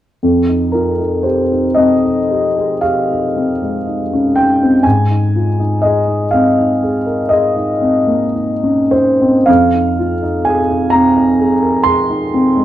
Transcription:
grand piano
0.23 F2
0.49 D#4
0.72 F4 A#4
0.99 D#4
1.23 G4 C5
1.52 D#4
1.75 C4 D#5
2.04 D#4
2.31 G4
2.57 G#4
2.81 G4 F5
3.11 D#4
3.36 C4
3.62 G#3
3.87 D#4
4.13 C#4
4.36 D#4 G5
4.63 C4
4.83 G#2 G#5
5.10 D#4
5.36 F4
5.59 D#4
5.82 G#4 D#5
6.08 D#4
6.31 C4 F5
6.58 D#4
6.82 G#4
7.06 A#4
7.29 G#4 D#5
7.56 D#4
7.81 C4
8.07 A#3
8.35 D#4
8.63 C#4
8.91 D#4 C5
9.21 C4
9.46 F2 F5
9.74 D#4
9.99 F4
10.23 D#4
10.45 G#4 G#5
10.69 D#4
10.90 C4 A#5
11.17 D#4
11.39 G#4
11.62 A#4
11.84 G#4 C6
12.10 D#4
12.34 C4
12.56 G#3

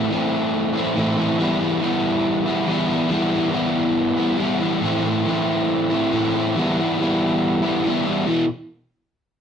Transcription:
overdriven electric guitar
Already playing: A3 C4 E4
0.10 E3 A3 C4
0.14 E4
0.74 C4 E4
0.79 A3
0.95 A2 E3 A3 C4
1.00 E4
1.17 C4 E4
1.21 A3
1.38 E3 G3 B3
1.43 E4
1.60 B3 E4
1.65 G3
1.80 E3 G3 B3
1.86 E4
2.45 B3 E4
2.50 G3
2.67 E3 G3 B3
2.71 E4
2.88 B3 E4
2.93 G3
3.09 E3 G3 B3
3.14 E4
3.31 B3 E4
3.36 G3
3.51 E3 G3 B3
3.55 E4
4.17 B3 E4
4.22 G3
4.38 E3 G3 B3
4.43 E4
4.60 B3 E4
4.64 G3
4.81 A2 E3 A3
4.85 C4 E4
5.03 C4 E4
5.07 A3
5.25 E3 A3 C4
5.30 E4
5.90 C4 E4
5.95 A3
6.12 A2 E3 A3 C4
6.17 E4
6.34 A3 C4 E4
6.56 E3 G3 B3
6.60 E4
6.78 B3 E4
6.82 G3
6.99 E3 G3 B3
7.04 E4
7.62 B3 E4
7.67 G3
7.84 E3 G3 B3
7.89 E4
8.05 B3 E4
8.09 G3
8.26 E2 B2 E3

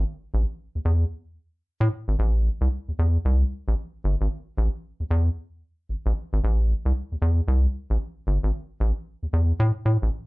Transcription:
analog synth bass
0.34 A1
0.75 E2
0.85 E2
1.81 A2
2.08 G#1
2.19 A1
2.61 C2
2.88 E2
2.99 E2
3.25 C2
3.68 A1
4.04 G1
4.21 G#1
4.58 A1
5.00 E2
5.11 E2
5.89 A1
6.06 A1
6.33 G#1
6.44 A1
6.85 C2
7.12 E2
7.22 E2
7.48 C2
7.90 A1
8.27 G1
8.43 G#1
8.80 A1
9.23 E2
9.33 E2
9.60 A2
9.85 A2
10.02 A1

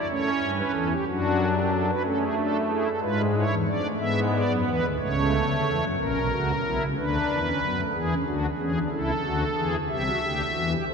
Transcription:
pipe organ
0.09 A3 C#4 C#5
0.41 G2 G3
0.58 B4
0.74 E2 E3 A4
0.90 G4
1.06 F#2 F#3 D4 F#4
1.56 G4
1.72 A4
1.88 B4
2.04 A3 C#4 A4
2.20 G#4
2.37 D4 A4
2.69 E4 G#4
2.85 A4
3.01 G#2 G#3 F4 B4
3.34 E4 C#5
3.50 E2 E3
3.66 F2 F3 D4 D5
3.83 A3
3.99 G#2 G#3 B3 E5
4.32 D5
4.48 F#2 F#3
4.65 E2 E3 B4
4.82 D2 D3
4.99 C#2 C#3 A3 C#5
5.48 D2 D3
5.65 E2 E3
5.82 F#2 F#3
5.98 A#1 A#2 C#4 A#4
6.14 B1 B2
6.31 C#2 C#3 F#4
6.64 B1 B2 E4
6.80 C#2 C#3
6.97 D2 D3 D4 B4
7.29 E2 E3
7.46 C#4
7.62 F#2 F#3 B3
7.78 A3
7.94 E2 E3 B3 G#4
8.10 C#4
8.26 D2 D3 D4 F#4
8.58 E2 E3 C#4 G#4
8.74 D4
8.91 C#2 C#3 E4 A4
9.23 D2 D3 F#4
9.56 E2 E3 G#4
9.88 C2 C3 G4 E5
10.05 F#4
10.21 D2 D3 G4
10.54 E2 E3 F#4
10.70 G4
10.87 C2 C3 A4 C5

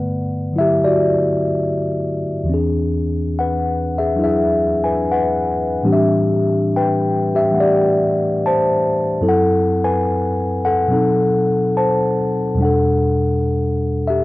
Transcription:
tine electric piano
Already playing: G2 D3 A3 B3 B4 F#5
0.53 D3 F#3 E4
0.58 G4 E5
0.84 F#4 D5
2.43 E2 E3
2.49 C4 D4
2.54 G#4
3.39 B4 F#5
3.98 G#4 E5
4.16 F#3 D4 E4 G#4
4.24 G#4 E5
4.84 B4 G#5
5.12 B4 F#5
5.83 A2 E3 G3 C4 D4 G4
5.93 G4 E5
6.76 B4 G5
7.35 G4 E5
7.51 E3 A3 F#5
7.60 G4 D5
8.46 C5 A5
9.21 F#2 F#3 C4 E4 A4
9.29 A4 F#5
9.84 B4 G#5
10.65 A4 F#5
10.88 B2 F#3 C4
10.93 D#4 A4
11.77 C5 A5
12.54 E2 B2
12.58 G3 D4
12.62 A4 F#5
14.08 G4 E5

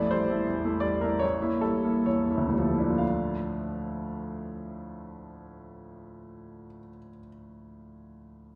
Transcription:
grand piano
Already playing: A3 E4 D5
0.11 G3 C5
0.30 A3 E4
0.47 E2
0.65 A3 E4
0.80 G3 D5
1.01 A3 E4 A#4
1.19 A1 C#5
1.42 A#3 E4
1.61 G3 A4
1.85 A#3 E4
2.06 E2 C#5
2.30 A#3 E4
2.37 D2
2.48 A2
2.53 G3
2.58 F3
2.68 A3
2.77 A#3 D4 E4
2.89 F4
2.98 F5

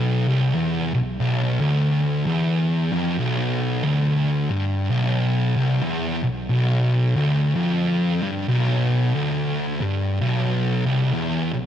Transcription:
distorted electric guitar
Already playing: B1
0.28 C2
0.55 E2
0.94 B1
1.20 B1
1.60 D2
2.26 E2
2.92 F2
3.19 B1
3.84 D2
4.50 G2
4.90 B1
5.57 C2
5.83 E2
6.23 B1
6.50 B1
7.16 D2
7.55 F2
8.22 G2
8.48 B1
9.14 D2
9.81 G2
10.20 B1
10.86 C2
11.13 E2
11.54 B1

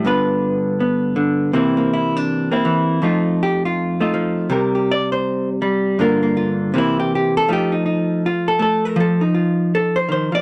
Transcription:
hollow-body jazz guitar
0.05 G2 D3 B3 F4 B4
0.80 B3
1.16 D3
1.53 C3 E3 A#3 C4 E4
1.77 A#3
1.94 E4
2.17 D4
2.52 A#3 C4 E4
2.65 E3
3.02 F2 F3 A3 D#4 F4
3.43 G4
3.65 F4
4.00 A3 D#4 F4
4.14 F3
4.50 C3 G3 G4 A#4
4.75 G4
4.91 D5
5.12 C5
5.62 G3
5.99 G2 D3 A#3 F4 A#4
6.23 A#3
6.37 F4
6.74 C3 E3 A#3 C4
6.78 E4
7.00 G4
7.15 G4
7.37 A4
7.49 F3 A3 D#4
7.53 G4
7.72 D#4
7.86 D#4
8.26 F4
8.48 A4
8.59 A3 A4
8.85 A#4
8.96 F3
9.00 A4
9.21 D#4
9.35 F4
9.75 A4
9.96 C5
10.09 D#3 C5
10.32 F3 D5

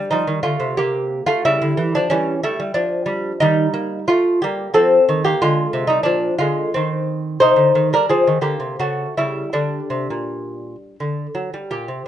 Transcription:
lute
Already playing: G3 D4
0.11 F3 G3 D#4
0.27 D#3
0.43 D3 A3 F4
0.60 C3
0.77 A#3 G4
1.26 A3 F4
1.45 C#3 G3 E4
1.62 D3
1.77 E3
1.95 F3 D4
2.10 E3 G3 C#4
2.43 G3 A3 E4
2.60 G3
2.74 F3 D4
3.06 G3
3.40 D#3 G3 D#4
3.74 A#3
4.08 A3 F4
4.42 G3 A#3 G4
4.74 F3 C4 A4
5.09 D#3
5.24 A#3 G4
5.42 D3 G#3 F4
5.73 C3
5.87 G3 D#4
6.03 A#2 F3 D4
6.38 D3 G#3 F4
6.74 D#3 C4
7.40 C3 D#4 C5
7.56 D3
7.75 D#3
7.93 G3 D4 A#4
8.09 F3 C4 G#4
8.27 D#3
8.41 D3 A#3 G4
8.60 C3
8.79 C#3 A3 F#4
9.17 C#3 G3 E4
9.53 D3 G3 D4
9.90 C3
10.10 A#2
11.00 D3
11.35 F#3
11.54 G3
11.71 A#2 G4
11.88 C3

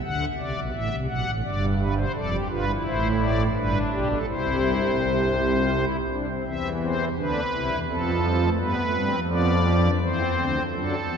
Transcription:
pipe organ
0.03 D2 D3 F#5
0.38 C2 C3 D5
0.55 B1 B2
0.74 A1 A2 E5
0.91 C2 C3
1.09 B1 B2 F#5
1.26 A1 A2
1.44 G1 G2 D5
1.79 B4
1.97 C5
2.14 F1 F2 A4 D5
2.32 G4
2.50 G1 G2 F4 B4
2.67 E4
2.85 A1 A2 C5
3.21 D5
3.56 G1 G2 D4 B4
3.92 B1 B2 G4
4.10 A4
4.28 C2 C3 E4 C5
5.01 C4
5.19 D4
5.37 E4
5.55 F4
5.74 E4
6.11 D4
6.29 C4
6.47 E2 E3 C4 E5
6.83 C4 C5
7.18 D2 D3 D4 B4
7.54 C2 C3 E4
7.71 E2 E3
7.89 F2 F3 C4 A4
8.24 G3
8.41 A3
8.60 G2 G3 B3 B4
8.77 A3
8.94 G2 G3 C4
9.12 F2 F3
9.30 B3 D5
9.65 C4
9.83 D4
10.01 E2 E3 C4 C5
10.37 D2 D3
10.73 F#2 F#3 D4 A4
11.08 E2 E3 B3

